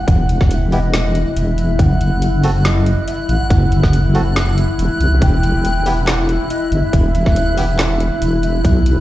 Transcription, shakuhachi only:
0.00 F#5
0.51 E5 F#5
0.72 D#5
1.36 E5
1.80 F#5 G5
2.65 D#5
3.07 E5
3.29 F#5
5.21 G5
6.07 F#5
6.24 F#5
6.29 E5
6.50 D#5
6.71 E5
8.43 E5

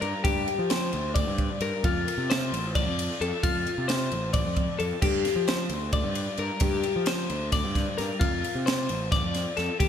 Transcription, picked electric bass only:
0.02 G2
0.25 G2
0.59 F3
0.94 D2
1.26 G2
1.61 G2
1.84 F2
2.18 C3
2.52 A1
2.87 F2
3.21 F2
3.44 F2
3.78 C3
4.12 A1
4.46 F2
4.80 F2
5.02 G2
5.36 F3
5.70 D2
6.04 G2
6.38 G2
6.61 G2
6.96 F3
7.30 D2
7.65 G2
7.99 G2
8.21 F2
8.55 C3
8.90 A1
9.24 F2
9.58 F2
9.80 D#2

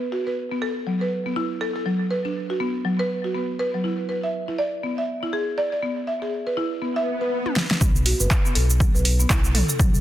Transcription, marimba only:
0.12 F#4
0.27 B4
0.52 B3
0.62 A4
0.87 F#3
1.01 B4
1.26 B3
1.36 E4
1.61 A4
1.76 A4
1.86 F#3
2.11 B4
2.25 D4
2.50 F#4
2.60 B3
2.85 F#3
2.99 B4
3.24 F#4
3.35 B3
3.59 B4
3.74 F#3
3.84 E4
4.09 B4
4.23 E5
4.48 E4
4.58 D5
4.83 B3
4.98 E5
5.23 E4
5.33 G#4
5.58 D5
5.72 D5
5.83 B3
6.07 E5
6.22 G#4
6.47 B4
6.57 E4
6.82 B3
6.96 E5
7.21 B4
7.81 B3
8.06 F#4
8.20 B4
8.45 B3
8.55 A4
8.80 F#3
8.95 B4
9.20 B3
9.30 E4
9.55 A4
9.69 A4
9.79 F#3

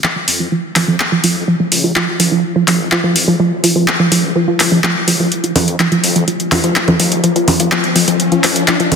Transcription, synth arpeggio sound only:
0.04 F3
0.16 F3
0.40 F3
0.52 F3
0.76 F3
0.88 F3
1.12 F3
1.24 F3
1.48 F3
1.60 F3
1.84 F3
1.96 F3
2.20 F3
2.32 F3
2.56 F3
2.68 F3
2.92 F3
3.04 F3
3.28 F3
3.40 F3
3.64 F3
3.76 F3
4.00 F3
4.12 F3
4.36 F3
4.48 F3
4.72 F3
4.84 F3
5.08 F3
5.20 F3
5.44 F3
5.55 F3
5.79 F3
5.92 F3
6.16 F3
6.28 F3
6.52 F3
6.64 F3
6.88 F3
7.00 F3
7.24 F3
7.36 F3
7.60 F3
7.72 F3
7.96 F3
8.08 F3
8.32 F3
8.44 F3
8.68 F3
8.80 F3

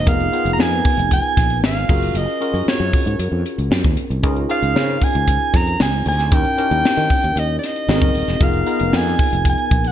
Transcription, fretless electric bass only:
0.07 F1
0.45 F1
0.58 F2
0.98 F1
1.37 A#1
1.63 G#1
1.89 F#1
2.14 F#1
2.54 F#2
2.66 muted fretless electric bass stroke
2.80 F#2
3.06 G#2
3.19 F#2
3.32 F2
3.58 C#2
3.71 F#2
3.85 D#2
4.10 C2
4.23 C#2
4.62 C#2
4.75 C#3
5.15 C#2
5.54 F2
5.81 C#2
6.06 D2
6.32 D#2
6.71 D#2
6.97 D#3
7.24 D#2
7.36 D#2
7.88 G#1
8.02 F#1
8.15 D#1
8.28 E1
8.40 F1
8.81 F1
8.93 F2
9.33 F1
9.71 A#1

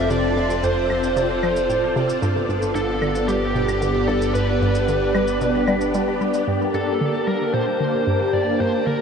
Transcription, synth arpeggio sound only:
0.10 C3
0.37 F2
0.63 F2
0.90 F2
1.16 C3
1.43 F3
1.69 A2
1.96 C3
2.22 G2
2.49 G2
2.75 G2
3.02 D3
3.28 G3
3.55 B2
3.82 D3
4.08 G2
4.35 G2
4.62 G2
4.88 D3
5.15 G3
5.41 B2
5.68 G3
5.95 G3
6.21 G3
6.48 G2
6.74 G2
7.01 D3
7.27 G3
7.54 A#2
7.80 D3
8.07 G2
8.33 G2
8.60 G2
8.87 D3

